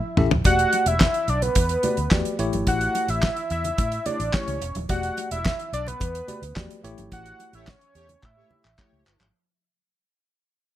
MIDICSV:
0, 0, Header, 1, 6, 480
1, 0, Start_track
1, 0, Tempo, 555556
1, 391, Time_signature, 4, 2, 24, 8
1, 9296, End_track
2, 0, Start_track
2, 0, Title_t, "Analog synth lead"
2, 0, Program_c, 0, 81
2, 0, Note_on_c, 0, 76, 102
2, 154, Note_off_c, 0, 76, 0
2, 396, Note_on_c, 0, 78, 119
2, 755, Note_on_c, 0, 76, 98
2, 768, Note_off_c, 0, 78, 0
2, 1117, Note_on_c, 0, 74, 97
2, 1130, Note_off_c, 0, 76, 0
2, 1229, Note_on_c, 0, 71, 91
2, 1242, Note_off_c, 0, 74, 0
2, 2070, Note_off_c, 0, 71, 0
2, 2315, Note_on_c, 0, 78, 110
2, 2675, Note_on_c, 0, 76, 105
2, 2688, Note_off_c, 0, 78, 0
2, 3030, Note_off_c, 0, 76, 0
2, 3035, Note_on_c, 0, 76, 112
2, 3507, Note_on_c, 0, 74, 105
2, 3520, Note_off_c, 0, 76, 0
2, 3750, Note_on_c, 0, 73, 98
2, 3763, Note_off_c, 0, 74, 0
2, 4111, Note_off_c, 0, 73, 0
2, 4231, Note_on_c, 0, 78, 99
2, 4566, Note_off_c, 0, 78, 0
2, 4593, Note_on_c, 0, 76, 90
2, 4927, Note_off_c, 0, 76, 0
2, 4955, Note_on_c, 0, 74, 86
2, 5076, Note_on_c, 0, 71, 87
2, 5089, Note_off_c, 0, 74, 0
2, 5914, Note_off_c, 0, 71, 0
2, 6159, Note_on_c, 0, 78, 114
2, 6521, Note_on_c, 0, 76, 90
2, 6534, Note_off_c, 0, 78, 0
2, 6650, Note_on_c, 0, 73, 102
2, 6663, Note_off_c, 0, 76, 0
2, 7126, Note_on_c, 0, 76, 86
2, 7139, Note_off_c, 0, 73, 0
2, 7599, Note_off_c, 0, 76, 0
2, 9296, End_track
3, 0, Start_track
3, 0, Title_t, "Analog polysynth"
3, 0, Program_c, 1, 90
3, 6512, Note_on_c, 1, 67, 96
3, 6514, Note_on_c, 1, 73, 106
3, 6515, Note_on_c, 1, 57, 97
3, 6614, Note_off_c, 1, 67, 0
3, 6615, Note_off_c, 1, 73, 0
3, 6616, Note_off_c, 1, 57, 0
3, 6865, Note_on_c, 1, 73, 122
3, 6866, Note_on_c, 1, 57, 93
3, 6868, Note_on_c, 1, 67, 106
3, 6970, Note_off_c, 1, 57, 0
3, 6970, Note_off_c, 1, 73, 0
3, 6971, Note_off_c, 1, 67, 0
3, 7224, Note_on_c, 1, 67, 79
3, 7226, Note_on_c, 1, 57, 78
3, 7226, Note_on_c, 1, 73, 90
3, 7329, Note_off_c, 1, 67, 0
3, 7330, Note_off_c, 1, 57, 0
3, 7330, Note_off_c, 1, 73, 0
3, 7588, Note_on_c, 1, 67, 84
3, 7589, Note_on_c, 1, 73, 105
3, 7592, Note_on_c, 1, 57, 89
3, 7932, Note_off_c, 1, 67, 0
3, 7932, Note_off_c, 1, 73, 0
3, 7934, Note_off_c, 1, 57, 0
3, 9296, End_track
4, 0, Start_track
4, 0, Title_t, "Tine electric piano"
4, 0, Program_c, 2, 4
4, 151, Note_on_c, 2, 61, 84
4, 154, Note_on_c, 2, 64, 76
4, 154, Note_on_c, 2, 67, 72
4, 155, Note_on_c, 2, 69, 83
4, 158, Note_on_c, 2, 76, 92
4, 255, Note_off_c, 2, 61, 0
4, 256, Note_off_c, 2, 67, 0
4, 257, Note_off_c, 2, 64, 0
4, 257, Note_off_c, 2, 69, 0
4, 258, Note_off_c, 2, 76, 0
4, 388, Note_on_c, 2, 57, 73
4, 391, Note_on_c, 2, 66, 67
4, 392, Note_on_c, 2, 67, 66
4, 394, Note_on_c, 2, 74, 78
4, 805, Note_off_c, 2, 57, 0
4, 807, Note_off_c, 2, 66, 0
4, 807, Note_off_c, 2, 67, 0
4, 808, Note_off_c, 2, 74, 0
4, 1583, Note_on_c, 2, 57, 71
4, 1585, Note_on_c, 2, 66, 63
4, 1586, Note_on_c, 2, 67, 61
4, 1591, Note_on_c, 2, 74, 80
4, 1691, Note_off_c, 2, 57, 0
4, 1692, Note_off_c, 2, 66, 0
4, 1693, Note_off_c, 2, 67, 0
4, 1695, Note_off_c, 2, 74, 0
4, 1827, Note_on_c, 2, 57, 77
4, 1830, Note_on_c, 2, 66, 81
4, 1832, Note_on_c, 2, 67, 81
4, 1834, Note_on_c, 2, 74, 89
4, 2037, Note_off_c, 2, 57, 0
4, 2038, Note_off_c, 2, 66, 0
4, 2039, Note_off_c, 2, 67, 0
4, 2041, Note_off_c, 2, 74, 0
4, 2064, Note_on_c, 2, 57, 100
4, 2068, Note_on_c, 2, 64, 94
4, 2068, Note_on_c, 2, 67, 91
4, 2072, Note_on_c, 2, 73, 104
4, 2836, Note_off_c, 2, 57, 0
4, 2838, Note_off_c, 2, 64, 0
4, 2838, Note_off_c, 2, 67, 0
4, 2840, Note_off_c, 2, 73, 0
4, 3505, Note_on_c, 2, 57, 66
4, 3509, Note_on_c, 2, 64, 69
4, 3509, Note_on_c, 2, 67, 62
4, 3512, Note_on_c, 2, 73, 78
4, 3612, Note_off_c, 2, 57, 0
4, 3614, Note_off_c, 2, 64, 0
4, 3614, Note_off_c, 2, 67, 0
4, 3615, Note_off_c, 2, 73, 0
4, 3741, Note_on_c, 2, 57, 65
4, 3744, Note_on_c, 2, 64, 69
4, 3745, Note_on_c, 2, 67, 61
4, 3749, Note_on_c, 2, 73, 74
4, 3954, Note_off_c, 2, 57, 0
4, 3955, Note_off_c, 2, 64, 0
4, 3956, Note_off_c, 2, 67, 0
4, 3958, Note_off_c, 2, 73, 0
4, 4224, Note_on_c, 2, 57, 73
4, 4225, Note_on_c, 2, 66, 70
4, 4228, Note_on_c, 2, 67, 68
4, 4231, Note_on_c, 2, 74, 84
4, 4643, Note_off_c, 2, 57, 0
4, 4644, Note_off_c, 2, 66, 0
4, 4645, Note_off_c, 2, 67, 0
4, 4647, Note_off_c, 2, 74, 0
4, 5424, Note_on_c, 2, 57, 69
4, 5425, Note_on_c, 2, 66, 68
4, 5428, Note_on_c, 2, 67, 68
4, 5429, Note_on_c, 2, 74, 79
4, 5531, Note_off_c, 2, 57, 0
4, 5532, Note_off_c, 2, 66, 0
4, 5534, Note_off_c, 2, 67, 0
4, 5534, Note_off_c, 2, 74, 0
4, 5666, Note_on_c, 2, 57, 85
4, 5667, Note_on_c, 2, 66, 79
4, 5670, Note_on_c, 2, 67, 77
4, 5671, Note_on_c, 2, 74, 89
4, 5876, Note_off_c, 2, 57, 0
4, 5877, Note_off_c, 2, 66, 0
4, 5878, Note_off_c, 2, 67, 0
4, 5879, Note_off_c, 2, 74, 0
4, 5907, Note_on_c, 2, 57, 96
4, 5911, Note_on_c, 2, 64, 85
4, 5913, Note_on_c, 2, 67, 96
4, 5914, Note_on_c, 2, 73, 110
4, 6677, Note_off_c, 2, 57, 0
4, 6679, Note_off_c, 2, 64, 0
4, 6680, Note_off_c, 2, 67, 0
4, 6681, Note_off_c, 2, 73, 0
4, 7346, Note_on_c, 2, 57, 71
4, 7350, Note_on_c, 2, 64, 61
4, 7352, Note_on_c, 2, 67, 69
4, 7354, Note_on_c, 2, 76, 76
4, 7453, Note_off_c, 2, 57, 0
4, 7454, Note_off_c, 2, 64, 0
4, 7456, Note_off_c, 2, 67, 0
4, 7457, Note_off_c, 2, 76, 0
4, 7588, Note_on_c, 2, 57, 69
4, 7590, Note_on_c, 2, 64, 68
4, 7591, Note_on_c, 2, 67, 60
4, 7594, Note_on_c, 2, 76, 78
4, 7798, Note_off_c, 2, 57, 0
4, 7798, Note_off_c, 2, 64, 0
4, 7799, Note_off_c, 2, 67, 0
4, 7800, Note_off_c, 2, 76, 0
4, 9296, End_track
5, 0, Start_track
5, 0, Title_t, "Fingered electric bass"
5, 0, Program_c, 3, 33
5, 147, Note_on_c, 3, 33, 99
5, 233, Note_off_c, 3, 33, 0
5, 267, Note_on_c, 3, 27, 88
5, 353, Note_off_c, 3, 27, 0
5, 390, Note_on_c, 3, 28, 96
5, 558, Note_off_c, 3, 28, 0
5, 744, Note_on_c, 3, 28, 114
5, 915, Note_off_c, 3, 28, 0
5, 1105, Note_on_c, 3, 35, 96
5, 1275, Note_off_c, 3, 35, 0
5, 1346, Note_on_c, 3, 40, 102
5, 1515, Note_off_c, 3, 40, 0
5, 1708, Note_on_c, 3, 38, 94
5, 1793, Note_off_c, 3, 38, 0
5, 1828, Note_on_c, 3, 40, 96
5, 1913, Note_off_c, 3, 40, 0
5, 2065, Note_on_c, 3, 33, 103
5, 2151, Note_off_c, 3, 33, 0
5, 2185, Note_on_c, 3, 32, 92
5, 2271, Note_off_c, 3, 32, 0
5, 2308, Note_on_c, 3, 33, 112
5, 2477, Note_off_c, 3, 33, 0
5, 2665, Note_on_c, 3, 33, 105
5, 2835, Note_off_c, 3, 33, 0
5, 3029, Note_on_c, 3, 40, 99
5, 3198, Note_off_c, 3, 40, 0
5, 3268, Note_on_c, 3, 45, 105
5, 3437, Note_off_c, 3, 45, 0
5, 3626, Note_on_c, 3, 33, 93
5, 3712, Note_off_c, 3, 33, 0
5, 3868, Note_on_c, 3, 37, 79
5, 3953, Note_off_c, 3, 37, 0
5, 3988, Note_on_c, 3, 28, 104
5, 4073, Note_off_c, 3, 28, 0
5, 4108, Note_on_c, 3, 27, 98
5, 4193, Note_off_c, 3, 27, 0
5, 4228, Note_on_c, 3, 28, 108
5, 4397, Note_off_c, 3, 28, 0
5, 4590, Note_on_c, 3, 28, 95
5, 4758, Note_off_c, 3, 28, 0
5, 4947, Note_on_c, 3, 35, 85
5, 5117, Note_off_c, 3, 35, 0
5, 5192, Note_on_c, 3, 40, 103
5, 5359, Note_off_c, 3, 40, 0
5, 5548, Note_on_c, 3, 38, 88
5, 5633, Note_off_c, 3, 38, 0
5, 5670, Note_on_c, 3, 40, 89
5, 5754, Note_off_c, 3, 40, 0
5, 5909, Note_on_c, 3, 33, 99
5, 5993, Note_off_c, 3, 33, 0
5, 6029, Note_on_c, 3, 32, 83
5, 6113, Note_off_c, 3, 32, 0
5, 6151, Note_on_c, 3, 33, 116
5, 6319, Note_off_c, 3, 33, 0
5, 6507, Note_on_c, 3, 33, 103
5, 6676, Note_off_c, 3, 33, 0
5, 6870, Note_on_c, 3, 40, 100
5, 7038, Note_off_c, 3, 40, 0
5, 7112, Note_on_c, 3, 45, 101
5, 7280, Note_off_c, 3, 45, 0
5, 7471, Note_on_c, 3, 33, 89
5, 7555, Note_off_c, 3, 33, 0
5, 7712, Note_on_c, 3, 37, 78
5, 7796, Note_off_c, 3, 37, 0
5, 7831, Note_on_c, 3, 31, 88
5, 7915, Note_off_c, 3, 31, 0
5, 7952, Note_on_c, 3, 32, 93
5, 8035, Note_off_c, 3, 32, 0
5, 9296, End_track
6, 0, Start_track
6, 0, Title_t, "Drums"
6, 149, Note_on_c, 9, 45, 98
6, 235, Note_off_c, 9, 45, 0
6, 269, Note_on_c, 9, 63, 79
6, 271, Note_on_c, 9, 43, 99
6, 356, Note_off_c, 9, 63, 0
6, 357, Note_off_c, 9, 43, 0
6, 384, Note_on_c, 9, 62, 55
6, 389, Note_on_c, 9, 42, 83
6, 390, Note_on_c, 9, 36, 103
6, 471, Note_off_c, 9, 62, 0
6, 476, Note_off_c, 9, 42, 0
6, 477, Note_off_c, 9, 36, 0
6, 509, Note_on_c, 9, 42, 52
6, 595, Note_off_c, 9, 42, 0
6, 627, Note_on_c, 9, 42, 68
6, 633, Note_on_c, 9, 62, 50
6, 713, Note_off_c, 9, 42, 0
6, 719, Note_off_c, 9, 62, 0
6, 744, Note_on_c, 9, 42, 66
6, 830, Note_off_c, 9, 42, 0
6, 864, Note_on_c, 9, 39, 86
6, 869, Note_on_c, 9, 63, 78
6, 870, Note_on_c, 9, 38, 93
6, 871, Note_on_c, 9, 36, 94
6, 950, Note_off_c, 9, 39, 0
6, 955, Note_off_c, 9, 63, 0
6, 957, Note_off_c, 9, 36, 0
6, 957, Note_off_c, 9, 38, 0
6, 986, Note_on_c, 9, 42, 49
6, 1072, Note_off_c, 9, 42, 0
6, 1105, Note_on_c, 9, 42, 60
6, 1192, Note_off_c, 9, 42, 0
6, 1227, Note_on_c, 9, 42, 61
6, 1230, Note_on_c, 9, 64, 62
6, 1314, Note_off_c, 9, 42, 0
6, 1317, Note_off_c, 9, 64, 0
6, 1342, Note_on_c, 9, 42, 106
6, 1347, Note_on_c, 9, 36, 117
6, 1348, Note_on_c, 9, 62, 51
6, 1428, Note_off_c, 9, 42, 0
6, 1434, Note_off_c, 9, 36, 0
6, 1434, Note_off_c, 9, 62, 0
6, 1462, Note_on_c, 9, 42, 56
6, 1548, Note_off_c, 9, 42, 0
6, 1581, Note_on_c, 9, 42, 65
6, 1589, Note_on_c, 9, 62, 30
6, 1589, Note_on_c, 9, 64, 64
6, 1668, Note_off_c, 9, 42, 0
6, 1676, Note_off_c, 9, 62, 0
6, 1676, Note_off_c, 9, 64, 0
6, 1703, Note_on_c, 9, 42, 53
6, 1790, Note_off_c, 9, 42, 0
6, 1820, Note_on_c, 9, 39, 86
6, 1827, Note_on_c, 9, 38, 102
6, 1828, Note_on_c, 9, 36, 123
6, 1828, Note_on_c, 9, 63, 65
6, 1907, Note_off_c, 9, 39, 0
6, 1913, Note_off_c, 9, 38, 0
6, 1914, Note_off_c, 9, 36, 0
6, 1915, Note_off_c, 9, 63, 0
6, 1946, Note_on_c, 9, 42, 57
6, 2033, Note_off_c, 9, 42, 0
6, 2064, Note_on_c, 9, 42, 77
6, 2151, Note_off_c, 9, 42, 0
6, 2185, Note_on_c, 9, 42, 56
6, 2192, Note_on_c, 9, 63, 80
6, 2272, Note_off_c, 9, 42, 0
6, 2279, Note_off_c, 9, 63, 0
6, 2305, Note_on_c, 9, 42, 84
6, 2305, Note_on_c, 9, 62, 59
6, 2308, Note_on_c, 9, 36, 94
6, 2391, Note_off_c, 9, 42, 0
6, 2391, Note_off_c, 9, 62, 0
6, 2395, Note_off_c, 9, 36, 0
6, 2427, Note_on_c, 9, 42, 53
6, 2514, Note_off_c, 9, 42, 0
6, 2548, Note_on_c, 9, 62, 51
6, 2551, Note_on_c, 9, 42, 70
6, 2634, Note_off_c, 9, 62, 0
6, 2637, Note_off_c, 9, 42, 0
6, 2665, Note_on_c, 9, 42, 64
6, 2751, Note_off_c, 9, 42, 0
6, 2785, Note_on_c, 9, 39, 87
6, 2788, Note_on_c, 9, 63, 73
6, 2791, Note_on_c, 9, 36, 95
6, 2791, Note_on_c, 9, 38, 103
6, 2871, Note_off_c, 9, 39, 0
6, 2874, Note_off_c, 9, 63, 0
6, 2877, Note_off_c, 9, 36, 0
6, 2877, Note_off_c, 9, 38, 0
6, 2907, Note_on_c, 9, 42, 47
6, 2994, Note_off_c, 9, 42, 0
6, 3026, Note_on_c, 9, 42, 53
6, 3112, Note_off_c, 9, 42, 0
6, 3147, Note_on_c, 9, 64, 63
6, 3150, Note_on_c, 9, 42, 65
6, 3234, Note_off_c, 9, 64, 0
6, 3236, Note_off_c, 9, 42, 0
6, 3267, Note_on_c, 9, 42, 103
6, 3267, Note_on_c, 9, 62, 47
6, 3270, Note_on_c, 9, 36, 126
6, 3353, Note_off_c, 9, 62, 0
6, 3354, Note_off_c, 9, 42, 0
6, 3356, Note_off_c, 9, 36, 0
6, 3385, Note_on_c, 9, 42, 52
6, 3471, Note_off_c, 9, 42, 0
6, 3505, Note_on_c, 9, 42, 65
6, 3509, Note_on_c, 9, 62, 30
6, 3509, Note_on_c, 9, 64, 67
6, 3591, Note_off_c, 9, 42, 0
6, 3595, Note_off_c, 9, 62, 0
6, 3595, Note_off_c, 9, 64, 0
6, 3628, Note_on_c, 9, 42, 55
6, 3714, Note_off_c, 9, 42, 0
6, 3742, Note_on_c, 9, 39, 87
6, 3748, Note_on_c, 9, 63, 74
6, 3749, Note_on_c, 9, 36, 121
6, 3749, Note_on_c, 9, 38, 118
6, 3829, Note_off_c, 9, 39, 0
6, 3834, Note_off_c, 9, 63, 0
6, 3835, Note_off_c, 9, 36, 0
6, 3835, Note_off_c, 9, 38, 0
6, 3868, Note_on_c, 9, 42, 63
6, 3955, Note_off_c, 9, 42, 0
6, 3988, Note_on_c, 9, 42, 83
6, 4074, Note_off_c, 9, 42, 0
6, 4104, Note_on_c, 9, 42, 60
6, 4114, Note_on_c, 9, 63, 74
6, 4191, Note_off_c, 9, 42, 0
6, 4201, Note_off_c, 9, 63, 0
6, 4226, Note_on_c, 9, 42, 86
6, 4227, Note_on_c, 9, 62, 56
6, 4229, Note_on_c, 9, 36, 104
6, 4313, Note_off_c, 9, 42, 0
6, 4313, Note_off_c, 9, 62, 0
6, 4316, Note_off_c, 9, 36, 0
6, 4347, Note_on_c, 9, 42, 47
6, 4434, Note_off_c, 9, 42, 0
6, 4468, Note_on_c, 9, 62, 50
6, 4472, Note_on_c, 9, 42, 72
6, 4555, Note_off_c, 9, 62, 0
6, 4559, Note_off_c, 9, 42, 0
6, 4590, Note_on_c, 9, 42, 61
6, 4677, Note_off_c, 9, 42, 0
6, 4710, Note_on_c, 9, 39, 85
6, 4710, Note_on_c, 9, 63, 68
6, 4713, Note_on_c, 9, 36, 100
6, 4717, Note_on_c, 9, 38, 105
6, 4797, Note_off_c, 9, 39, 0
6, 4797, Note_off_c, 9, 63, 0
6, 4800, Note_off_c, 9, 36, 0
6, 4803, Note_off_c, 9, 38, 0
6, 4834, Note_on_c, 9, 42, 43
6, 4920, Note_off_c, 9, 42, 0
6, 4954, Note_on_c, 9, 42, 61
6, 5041, Note_off_c, 9, 42, 0
6, 5068, Note_on_c, 9, 64, 61
6, 5079, Note_on_c, 9, 42, 61
6, 5155, Note_off_c, 9, 64, 0
6, 5166, Note_off_c, 9, 42, 0
6, 5186, Note_on_c, 9, 62, 46
6, 5193, Note_on_c, 9, 36, 110
6, 5195, Note_on_c, 9, 42, 97
6, 5273, Note_off_c, 9, 62, 0
6, 5279, Note_off_c, 9, 36, 0
6, 5281, Note_off_c, 9, 42, 0
6, 5313, Note_on_c, 9, 42, 52
6, 5400, Note_off_c, 9, 42, 0
6, 5429, Note_on_c, 9, 42, 62
6, 5429, Note_on_c, 9, 62, 30
6, 5429, Note_on_c, 9, 64, 59
6, 5515, Note_off_c, 9, 42, 0
6, 5515, Note_off_c, 9, 62, 0
6, 5515, Note_off_c, 9, 64, 0
6, 5553, Note_on_c, 9, 42, 55
6, 5640, Note_off_c, 9, 42, 0
6, 5667, Note_on_c, 9, 39, 88
6, 5671, Note_on_c, 9, 63, 62
6, 5672, Note_on_c, 9, 36, 114
6, 5674, Note_on_c, 9, 38, 110
6, 5754, Note_off_c, 9, 39, 0
6, 5757, Note_off_c, 9, 63, 0
6, 5758, Note_off_c, 9, 36, 0
6, 5760, Note_off_c, 9, 38, 0
6, 5793, Note_on_c, 9, 42, 62
6, 5880, Note_off_c, 9, 42, 0
6, 5914, Note_on_c, 9, 42, 80
6, 6000, Note_off_c, 9, 42, 0
6, 6029, Note_on_c, 9, 42, 55
6, 6033, Note_on_c, 9, 63, 82
6, 6116, Note_off_c, 9, 42, 0
6, 6120, Note_off_c, 9, 63, 0
6, 6149, Note_on_c, 9, 62, 63
6, 6151, Note_on_c, 9, 42, 89
6, 6152, Note_on_c, 9, 36, 98
6, 6235, Note_off_c, 9, 62, 0
6, 6237, Note_off_c, 9, 42, 0
6, 6238, Note_off_c, 9, 36, 0
6, 6269, Note_on_c, 9, 42, 52
6, 6356, Note_off_c, 9, 42, 0
6, 6391, Note_on_c, 9, 62, 53
6, 6394, Note_on_c, 9, 42, 66
6, 6477, Note_off_c, 9, 62, 0
6, 6480, Note_off_c, 9, 42, 0
6, 6508, Note_on_c, 9, 42, 60
6, 6595, Note_off_c, 9, 42, 0
6, 6627, Note_on_c, 9, 39, 86
6, 6628, Note_on_c, 9, 63, 66
6, 6633, Note_on_c, 9, 36, 107
6, 6633, Note_on_c, 9, 38, 108
6, 6713, Note_off_c, 9, 39, 0
6, 6714, Note_off_c, 9, 63, 0
6, 6719, Note_off_c, 9, 38, 0
6, 6720, Note_off_c, 9, 36, 0
6, 6750, Note_on_c, 9, 42, 43
6, 6837, Note_off_c, 9, 42, 0
6, 6870, Note_on_c, 9, 42, 59
6, 6957, Note_off_c, 9, 42, 0
6, 6988, Note_on_c, 9, 64, 69
6, 6992, Note_on_c, 9, 42, 63
6, 7074, Note_off_c, 9, 64, 0
6, 7078, Note_off_c, 9, 42, 0
6, 7107, Note_on_c, 9, 62, 45
6, 7112, Note_on_c, 9, 36, 116
6, 7112, Note_on_c, 9, 39, 61
6, 7193, Note_off_c, 9, 62, 0
6, 7198, Note_off_c, 9, 39, 0
6, 7199, Note_off_c, 9, 36, 0
6, 7349, Note_on_c, 9, 62, 30
6, 7349, Note_on_c, 9, 64, 66
6, 7436, Note_off_c, 9, 62, 0
6, 7436, Note_off_c, 9, 64, 0
6, 7473, Note_on_c, 9, 39, 76
6, 7559, Note_off_c, 9, 39, 0
6, 7586, Note_on_c, 9, 63, 72
6, 7591, Note_on_c, 9, 39, 97
6, 7592, Note_on_c, 9, 36, 111
6, 7673, Note_off_c, 9, 63, 0
6, 7677, Note_off_c, 9, 39, 0
6, 7678, Note_off_c, 9, 36, 0
6, 7836, Note_on_c, 9, 39, 103
6, 7922, Note_off_c, 9, 39, 0
6, 7953, Note_on_c, 9, 63, 78
6, 7954, Note_on_c, 9, 39, 89
6, 8040, Note_off_c, 9, 39, 0
6, 8040, Note_off_c, 9, 63, 0
6, 9296, End_track
0, 0, End_of_file